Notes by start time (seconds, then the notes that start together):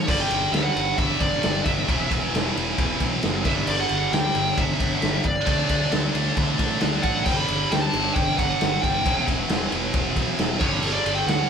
0.08 G1 G2 D3 G3 D5, kick, crash
0.20 G5
0.30 G1, ride
0.52 D2 E5, snare, ride
0.63 F#5
0.76 G1, ride
0.98 G1 E5, kick, ride
1.20 G1 D5, kick, ride
1.43 G1, snare, ride
1.66 G1 E5, kick, ride
1.87 E1 E2 B2, kick, ride
1.91 E3
2.11 E1, kick, ride
2.33 E1, snare, ride
2.56 E1, ride
2.78 E1, kick, ride
3.00 B1, kick, ride
3.23 F#1, snare, ride
3.44 G1 G2 D3 G3 E5, kick, ride
3.67 G1 D5, crash
3.80 F#5
3.89 G1, ride
4.12 D2 G5, snare, ride
4.34 G1, ride
4.58 G1 E5, kick, ride
4.80 G1, kick, ride
5.02 G1, snare, ride
5.24 G1 D5, kick, ride
5.45 D2 D3 A3 D4, kick, ride
5.69 D2, kick, ride
5.91 D2, snare, ride
6.14 D2, ride
6.37 D2, kick, ride
6.59 A2, kick, ride
6.81 D2, snare, ride
7.03 A1 F#5, kick, ride
7.25 G1 G2 D3 G3 G5, kick, crash
7.37 B5
7.48 G1, ride
7.72 D2 G5, snare, ride
7.81 A5
7.93 G1, ride
8.14 G1 G5, kick, ride
8.37 G1 F#5, kick, ride
8.61 G1, snare, ride
8.83 G1 G5, kick, ride
9.04 E1 E2 B2 E3, kick, ride
9.28 E1, kick, ride
9.49 E1, snare, ride
9.72 E1, ride
9.94 E1, kick, ride
10.16 B1, kick, ride
10.39 E1, snare, ride
10.60 G1 G2 D3 G3 C#5, kick, ride
10.82 G1, crash
10.94 D5
11.05 G1, ride
11.15 G5
11.26 D2 F#5, snare, ride